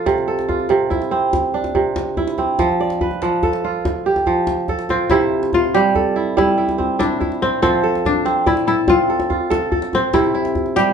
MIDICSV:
0, 0, Header, 1, 4, 480
1, 0, Start_track
1, 0, Key_signature, 0, "major"
1, 0, Tempo, 419580
1, 78, Time_signature, 12, 3, 24, 8
1, 12507, End_track
2, 0, Start_track
2, 0, Title_t, "Kora"
2, 0, Program_c, 0, 46
2, 0, Note_on_c, 0, 53, 78
2, 0, Note_on_c, 0, 65, 63
2, 0, Note_on_c, 0, 69, 73
2, 71, Note_on_c, 0, 48, 87
2, 135, Note_off_c, 0, 53, 0
2, 312, Note_off_c, 0, 69, 0
2, 317, Note_on_c, 0, 69, 64
2, 550, Note_off_c, 0, 65, 0
2, 555, Note_on_c, 0, 65, 69
2, 786, Note_off_c, 0, 48, 0
2, 800, Note_on_c, 0, 48, 80
2, 1033, Note_on_c, 0, 64, 68
2, 1273, Note_on_c, 0, 60, 76
2, 1762, Note_on_c, 0, 62, 59
2, 1824, Note_off_c, 0, 69, 0
2, 1987, Note_off_c, 0, 48, 0
2, 2001, Note_on_c, 0, 48, 69
2, 2287, Note_off_c, 0, 65, 0
2, 2481, Note_off_c, 0, 64, 0
2, 2485, Note_on_c, 0, 64, 73
2, 2723, Note_off_c, 0, 60, 0
2, 2728, Note_on_c, 0, 60, 64
2, 2966, Note_on_c, 0, 53, 82
2, 3022, Note_off_c, 0, 48, 0
2, 3034, Note_off_c, 0, 64, 0
2, 3208, Note_on_c, 0, 74, 65
2, 3445, Note_on_c, 0, 71, 66
2, 3514, Note_off_c, 0, 60, 0
2, 3676, Note_off_c, 0, 53, 0
2, 3683, Note_off_c, 0, 62, 0
2, 3690, Note_on_c, 0, 53, 74
2, 3926, Note_on_c, 0, 69, 67
2, 4169, Note_on_c, 0, 65, 68
2, 4476, Note_off_c, 0, 74, 0
2, 4645, Note_on_c, 0, 67, 66
2, 4851, Note_off_c, 0, 71, 0
2, 4869, Note_off_c, 0, 53, 0
2, 4882, Note_on_c, 0, 53, 75
2, 5361, Note_off_c, 0, 69, 0
2, 5366, Note_on_c, 0, 69, 75
2, 5600, Note_off_c, 0, 65, 0
2, 5605, Note_on_c, 0, 65, 63
2, 5848, Note_on_c, 0, 48, 94
2, 5850, Note_on_c, 0, 64, 73
2, 5903, Note_off_c, 0, 53, 0
2, 6261, Note_off_c, 0, 67, 0
2, 6573, Note_on_c, 0, 55, 85
2, 6806, Note_off_c, 0, 69, 0
2, 6811, Note_on_c, 0, 69, 66
2, 7041, Note_off_c, 0, 64, 0
2, 7046, Note_on_c, 0, 64, 67
2, 7114, Note_off_c, 0, 65, 0
2, 7272, Note_off_c, 0, 55, 0
2, 7286, Note_on_c, 0, 55, 90
2, 7519, Note_off_c, 0, 64, 0
2, 7524, Note_on_c, 0, 64, 67
2, 7759, Note_on_c, 0, 60, 65
2, 7993, Note_off_c, 0, 64, 0
2, 7997, Note_on_c, 0, 64, 81
2, 8237, Note_off_c, 0, 64, 0
2, 8242, Note_on_c, 0, 64, 61
2, 8318, Note_off_c, 0, 69, 0
2, 8525, Note_off_c, 0, 48, 0
2, 8719, Note_on_c, 0, 69, 70
2, 8723, Note_on_c, 0, 53, 91
2, 8780, Note_off_c, 0, 55, 0
2, 8958, Note_off_c, 0, 69, 0
2, 8963, Note_on_c, 0, 69, 72
2, 9437, Note_off_c, 0, 60, 0
2, 9442, Note_on_c, 0, 60, 83
2, 9683, Note_on_c, 0, 74, 71
2, 9915, Note_off_c, 0, 69, 0
2, 9920, Note_on_c, 0, 69, 71
2, 10034, Note_off_c, 0, 64, 0
2, 10153, Note_off_c, 0, 60, 0
2, 10158, Note_on_c, 0, 60, 84
2, 10401, Note_off_c, 0, 69, 0
2, 10406, Note_on_c, 0, 69, 69
2, 10637, Note_on_c, 0, 65, 67
2, 10868, Note_off_c, 0, 69, 0
2, 10872, Note_on_c, 0, 69, 84
2, 10950, Note_off_c, 0, 74, 0
2, 11113, Note_off_c, 0, 69, 0
2, 11117, Note_on_c, 0, 69, 65
2, 11400, Note_off_c, 0, 53, 0
2, 11599, Note_on_c, 0, 48, 91
2, 11601, Note_on_c, 0, 64, 75
2, 11669, Note_off_c, 0, 65, 0
2, 11831, Note_off_c, 0, 64, 0
2, 11835, Note_on_c, 0, 64, 74
2, 12217, Note_off_c, 0, 60, 0
2, 12312, Note_on_c, 0, 55, 83
2, 12507, Note_off_c, 0, 48, 0
2, 12507, Note_off_c, 0, 55, 0
2, 12507, Note_off_c, 0, 64, 0
2, 12507, Note_off_c, 0, 69, 0
2, 12507, End_track
3, 0, Start_track
3, 0, Title_t, "Kora"
3, 0, Program_c, 1, 46
3, 5608, Note_on_c, 1, 60, 73
3, 5840, Note_on_c, 1, 64, 85
3, 6341, Note_on_c, 1, 65, 81
3, 6410, Note_off_c, 1, 64, 0
3, 6571, Note_on_c, 1, 67, 82
3, 7302, Note_on_c, 1, 64, 85
3, 7371, Note_off_c, 1, 65, 0
3, 7667, Note_off_c, 1, 60, 0
3, 8003, Note_on_c, 1, 62, 86
3, 8187, Note_off_c, 1, 67, 0
3, 8492, Note_on_c, 1, 60, 88
3, 8718, Note_off_c, 1, 60, 0
3, 8723, Note_on_c, 1, 60, 88
3, 9095, Note_off_c, 1, 64, 0
3, 9219, Note_off_c, 1, 62, 0
3, 9223, Note_on_c, 1, 62, 87
3, 9691, Note_on_c, 1, 64, 82
3, 9922, Note_off_c, 1, 64, 0
3, 9927, Note_on_c, 1, 64, 89
3, 10176, Note_on_c, 1, 65, 86
3, 10245, Note_off_c, 1, 64, 0
3, 10782, Note_off_c, 1, 60, 0
3, 11145, Note_off_c, 1, 62, 0
3, 11380, Note_on_c, 1, 60, 92
3, 11598, Note_on_c, 1, 64, 87
3, 11667, Note_off_c, 1, 65, 0
3, 12311, Note_on_c, 1, 67, 93
3, 12507, Note_off_c, 1, 60, 0
3, 12507, Note_off_c, 1, 64, 0
3, 12507, Note_off_c, 1, 67, 0
3, 12507, End_track
4, 0, Start_track
4, 0, Title_t, "Djembe"
4, 74, Note_on_c, 9, 62, 61
4, 74, Note_on_c, 9, 64, 56
4, 188, Note_off_c, 9, 62, 0
4, 188, Note_off_c, 9, 64, 0
4, 206, Note_on_c, 9, 63, 46
4, 320, Note_off_c, 9, 63, 0
4, 443, Note_on_c, 9, 62, 54
4, 557, Note_off_c, 9, 62, 0
4, 564, Note_on_c, 9, 62, 18
4, 564, Note_on_c, 9, 64, 65
4, 679, Note_off_c, 9, 62, 0
4, 679, Note_off_c, 9, 64, 0
4, 680, Note_on_c, 9, 63, 51
4, 790, Note_on_c, 9, 62, 63
4, 795, Note_off_c, 9, 63, 0
4, 905, Note_off_c, 9, 62, 0
4, 912, Note_on_c, 9, 62, 21
4, 1027, Note_off_c, 9, 62, 0
4, 1045, Note_on_c, 9, 63, 64
4, 1045, Note_on_c, 9, 64, 60
4, 1159, Note_off_c, 9, 63, 0
4, 1159, Note_off_c, 9, 64, 0
4, 1164, Note_on_c, 9, 62, 53
4, 1279, Note_off_c, 9, 62, 0
4, 1523, Note_on_c, 9, 62, 66
4, 1523, Note_on_c, 9, 63, 64
4, 1523, Note_on_c, 9, 64, 65
4, 1638, Note_off_c, 9, 62, 0
4, 1638, Note_off_c, 9, 63, 0
4, 1638, Note_off_c, 9, 64, 0
4, 1761, Note_on_c, 9, 62, 21
4, 1875, Note_off_c, 9, 62, 0
4, 1877, Note_on_c, 9, 62, 57
4, 1877, Note_on_c, 9, 63, 56
4, 1992, Note_off_c, 9, 62, 0
4, 1992, Note_off_c, 9, 63, 0
4, 2000, Note_on_c, 9, 64, 72
4, 2115, Note_off_c, 9, 64, 0
4, 2242, Note_on_c, 9, 62, 80
4, 2242, Note_on_c, 9, 63, 69
4, 2356, Note_off_c, 9, 62, 0
4, 2356, Note_off_c, 9, 63, 0
4, 2483, Note_on_c, 9, 64, 72
4, 2598, Note_off_c, 9, 64, 0
4, 2603, Note_on_c, 9, 62, 62
4, 2717, Note_off_c, 9, 62, 0
4, 2721, Note_on_c, 9, 63, 73
4, 2835, Note_off_c, 9, 63, 0
4, 2961, Note_on_c, 9, 62, 68
4, 2961, Note_on_c, 9, 64, 74
4, 3075, Note_off_c, 9, 62, 0
4, 3075, Note_off_c, 9, 64, 0
4, 3084, Note_on_c, 9, 63, 54
4, 3199, Note_off_c, 9, 63, 0
4, 3319, Note_on_c, 9, 62, 56
4, 3433, Note_off_c, 9, 62, 0
4, 3442, Note_on_c, 9, 64, 74
4, 3557, Note_off_c, 9, 64, 0
4, 3559, Note_on_c, 9, 62, 24
4, 3559, Note_on_c, 9, 63, 60
4, 3673, Note_off_c, 9, 62, 0
4, 3673, Note_off_c, 9, 63, 0
4, 3681, Note_on_c, 9, 62, 75
4, 3795, Note_off_c, 9, 62, 0
4, 3921, Note_on_c, 9, 63, 73
4, 3921, Note_on_c, 9, 64, 69
4, 4036, Note_off_c, 9, 63, 0
4, 4036, Note_off_c, 9, 64, 0
4, 4040, Note_on_c, 9, 62, 60
4, 4155, Note_off_c, 9, 62, 0
4, 4279, Note_on_c, 9, 62, 23
4, 4393, Note_off_c, 9, 62, 0
4, 4407, Note_on_c, 9, 62, 69
4, 4407, Note_on_c, 9, 63, 68
4, 4407, Note_on_c, 9, 64, 63
4, 4521, Note_off_c, 9, 62, 0
4, 4521, Note_off_c, 9, 63, 0
4, 4521, Note_off_c, 9, 64, 0
4, 4761, Note_on_c, 9, 62, 57
4, 4761, Note_on_c, 9, 63, 56
4, 4875, Note_off_c, 9, 62, 0
4, 4875, Note_off_c, 9, 63, 0
4, 4877, Note_on_c, 9, 62, 22
4, 4877, Note_on_c, 9, 64, 66
4, 4992, Note_off_c, 9, 62, 0
4, 4992, Note_off_c, 9, 64, 0
4, 5114, Note_on_c, 9, 62, 69
4, 5114, Note_on_c, 9, 63, 74
4, 5228, Note_off_c, 9, 62, 0
4, 5228, Note_off_c, 9, 63, 0
4, 5357, Note_on_c, 9, 62, 23
4, 5357, Note_on_c, 9, 64, 73
4, 5472, Note_off_c, 9, 62, 0
4, 5472, Note_off_c, 9, 64, 0
4, 5476, Note_on_c, 9, 62, 56
4, 5591, Note_off_c, 9, 62, 0
4, 5596, Note_on_c, 9, 63, 69
4, 5711, Note_off_c, 9, 63, 0
4, 5726, Note_on_c, 9, 62, 20
4, 5830, Note_off_c, 9, 62, 0
4, 5830, Note_on_c, 9, 62, 70
4, 5830, Note_on_c, 9, 64, 69
4, 5945, Note_off_c, 9, 62, 0
4, 5945, Note_off_c, 9, 64, 0
4, 5961, Note_on_c, 9, 63, 56
4, 6075, Note_off_c, 9, 63, 0
4, 6086, Note_on_c, 9, 62, 24
4, 6200, Note_off_c, 9, 62, 0
4, 6210, Note_on_c, 9, 62, 56
4, 6324, Note_off_c, 9, 62, 0
4, 6325, Note_on_c, 9, 64, 74
4, 6439, Note_off_c, 9, 64, 0
4, 6455, Note_on_c, 9, 63, 59
4, 6570, Note_off_c, 9, 63, 0
4, 6574, Note_on_c, 9, 62, 69
4, 6689, Note_off_c, 9, 62, 0
4, 6811, Note_on_c, 9, 63, 70
4, 6811, Note_on_c, 9, 64, 69
4, 6925, Note_off_c, 9, 63, 0
4, 6925, Note_off_c, 9, 64, 0
4, 7298, Note_on_c, 9, 62, 63
4, 7298, Note_on_c, 9, 63, 65
4, 7298, Note_on_c, 9, 64, 63
4, 7413, Note_off_c, 9, 62, 0
4, 7413, Note_off_c, 9, 63, 0
4, 7413, Note_off_c, 9, 64, 0
4, 7650, Note_on_c, 9, 62, 58
4, 7650, Note_on_c, 9, 63, 58
4, 7764, Note_off_c, 9, 62, 0
4, 7764, Note_off_c, 9, 63, 0
4, 7775, Note_on_c, 9, 64, 66
4, 7889, Note_off_c, 9, 64, 0
4, 8013, Note_on_c, 9, 62, 72
4, 8013, Note_on_c, 9, 63, 68
4, 8128, Note_off_c, 9, 62, 0
4, 8128, Note_off_c, 9, 63, 0
4, 8252, Note_on_c, 9, 64, 77
4, 8367, Note_off_c, 9, 64, 0
4, 8372, Note_on_c, 9, 62, 53
4, 8487, Note_off_c, 9, 62, 0
4, 8493, Note_on_c, 9, 62, 21
4, 8493, Note_on_c, 9, 63, 61
4, 8607, Note_off_c, 9, 62, 0
4, 8607, Note_off_c, 9, 63, 0
4, 8731, Note_on_c, 9, 62, 60
4, 8731, Note_on_c, 9, 64, 61
4, 8846, Note_off_c, 9, 62, 0
4, 8846, Note_off_c, 9, 64, 0
4, 8858, Note_on_c, 9, 63, 51
4, 8973, Note_off_c, 9, 63, 0
4, 8983, Note_on_c, 9, 62, 21
4, 9098, Note_off_c, 9, 62, 0
4, 9099, Note_on_c, 9, 62, 54
4, 9214, Note_off_c, 9, 62, 0
4, 9215, Note_on_c, 9, 64, 70
4, 9329, Note_off_c, 9, 64, 0
4, 9336, Note_on_c, 9, 63, 56
4, 9448, Note_on_c, 9, 62, 69
4, 9451, Note_off_c, 9, 63, 0
4, 9563, Note_off_c, 9, 62, 0
4, 9684, Note_on_c, 9, 63, 72
4, 9684, Note_on_c, 9, 64, 71
4, 9799, Note_off_c, 9, 63, 0
4, 9799, Note_off_c, 9, 64, 0
4, 9804, Note_on_c, 9, 62, 58
4, 9918, Note_off_c, 9, 62, 0
4, 10156, Note_on_c, 9, 62, 67
4, 10156, Note_on_c, 9, 63, 73
4, 10156, Note_on_c, 9, 64, 72
4, 10270, Note_off_c, 9, 62, 0
4, 10270, Note_off_c, 9, 63, 0
4, 10270, Note_off_c, 9, 64, 0
4, 10520, Note_on_c, 9, 62, 62
4, 10520, Note_on_c, 9, 63, 61
4, 10634, Note_off_c, 9, 62, 0
4, 10634, Note_off_c, 9, 63, 0
4, 10645, Note_on_c, 9, 64, 73
4, 10759, Note_off_c, 9, 64, 0
4, 10885, Note_on_c, 9, 62, 82
4, 10885, Note_on_c, 9, 63, 82
4, 10999, Note_off_c, 9, 62, 0
4, 10999, Note_off_c, 9, 63, 0
4, 11118, Note_on_c, 9, 64, 88
4, 11232, Note_off_c, 9, 64, 0
4, 11236, Note_on_c, 9, 62, 63
4, 11351, Note_off_c, 9, 62, 0
4, 11362, Note_on_c, 9, 62, 27
4, 11362, Note_on_c, 9, 63, 77
4, 11476, Note_off_c, 9, 62, 0
4, 11476, Note_off_c, 9, 63, 0
4, 11594, Note_on_c, 9, 62, 76
4, 11594, Note_on_c, 9, 64, 80
4, 11709, Note_off_c, 9, 62, 0
4, 11709, Note_off_c, 9, 64, 0
4, 11715, Note_on_c, 9, 63, 55
4, 11829, Note_off_c, 9, 63, 0
4, 11835, Note_on_c, 9, 62, 25
4, 11950, Note_off_c, 9, 62, 0
4, 11954, Note_on_c, 9, 62, 61
4, 12069, Note_off_c, 9, 62, 0
4, 12073, Note_on_c, 9, 64, 74
4, 12187, Note_off_c, 9, 64, 0
4, 12193, Note_on_c, 9, 63, 62
4, 12307, Note_off_c, 9, 63, 0
4, 12315, Note_on_c, 9, 62, 81
4, 12430, Note_off_c, 9, 62, 0
4, 12507, End_track
0, 0, End_of_file